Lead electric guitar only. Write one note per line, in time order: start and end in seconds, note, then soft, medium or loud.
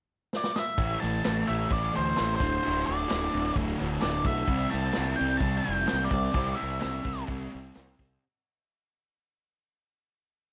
0.37 0.58 D5 medium
0.56 0.98 E5 medium
1.00 1.48 A5 loud
1.47 1.71 E5 medium
1.73 1.93 D5 medium
1.96 2.35 C5 medium
2.36 2.86 C5 medium
2.87 3.52 D5 medium
4.02 4.26 D5 medium
4.26 4.74 E5 loud
4.70 5.14 A5 loud
5.16 5.39 G5 medium
5.37 5.64 A5 loud
5.57 5.74 G#5 loud
5.74 6.10 G5 loud
6.04 6.57 D5 medium
6.55 7.23 E5 medium